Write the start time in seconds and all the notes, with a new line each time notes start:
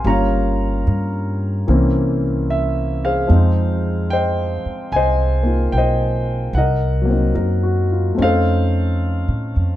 0.04 G1 G3 A#3 C#4 F4 C#5 A#5
0.10 F5
0.87 G2
1.68 C2 E3 A#3 C4 C#4
2.50 E5
3.05 G#4 C5 F5
3.27 F2 F3 G#3 C4 D#4
4.10 C5 D#5 G5
4.65 muted upright bass stroke
4.92 C2 G#5
4.96 C5 D#5
5.43 A#3 D#4 F4
5.72 B1 G5
5.78 C5 D#5
6.53 C2 F#5
6.58 A#4 D#5
7.02 F#3 A#3
7.09 C4 D#4
7.35 F#2 A#4
7.63 F#4
7.92 F4
8.15 F2 A3 C4 C#4
8.20 D#4 A4 C5 F5
9.28 A2
9.56 F2